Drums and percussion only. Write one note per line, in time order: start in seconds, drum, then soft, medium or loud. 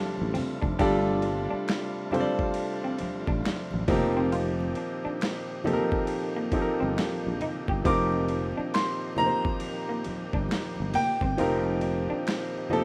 0.18 high conga medium
0.35 open hi-hat soft
0.35 ride soft
0.35 low conga medium
0.62 kick medium
0.79 kick loud
0.79 ride medium
0.79 muted conga soft
1.07 muted conga soft
1.22 ride medium
1.67 finger snap loud
1.67 snare loud
1.67 ride medium
1.67 muted conga soft
2.11 ride medium
2.11 high conga soft
2.11 low conga medium
2.39 kick medium
2.54 ride medium
2.83 muted conga soft
2.98 ride medium
2.98 high conga medium
3.27 kick medium
3.44 finger snap loud
3.44 snare loud
3.44 ride medium
3.44 high conga medium
3.71 muted conga soft
3.71 high conga medium
3.88 kick loud
3.88 open hi-hat soft
3.88 ride medium
3.88 low conga medium
4.32 ride medium
4.32 muted conga soft
4.60 muted conga soft
4.75 ride medium
5.20 finger snap loud
5.20 snare loud
5.20 ride medium
5.20 muted conga soft
5.64 ride medium
5.64 high conga soft
5.64 low conga medium
5.92 kick medium
6.07 ride medium
6.36 muted conga soft
6.52 kick loud
6.52 ride medium
6.52 high conga medium
6.97 finger snap medium
6.97 snare loud
6.97 ride medium
6.97 muted conga soft
6.97 high conga medium
7.23 high conga medium
7.41 ride medium
7.41 low conga medium
7.68 kick loud
7.85 kick loud
7.85 ride medium
7.85 muted conga soft
8.12 muted conga soft
8.28 ride medium
8.74 finger snap loud
8.74 snare loud
8.74 ride medium
9.16 ride soft
9.16 high conga soft
9.16 low conga medium
9.45 kick medium
9.60 ride medium
9.60 muted conga soft
9.89 muted conga soft
10.04 ride medium
10.04 high conga medium
10.33 kick medium
10.49 finger snap medium
10.49 snare loud
10.49 ride medium
10.49 muted conga soft
10.49 high conga medium
10.76 high conga medium
10.93 open hi-hat soft
10.93 ride medium
10.93 low conga medium
11.21 kick medium
11.38 ride medium
11.81 ride medium
12.25 finger snap loud
12.25 snare loud
12.25 ride medium
12.25 muted conga soft
12.69 ride soft
12.69 high conga soft
12.69 low conga medium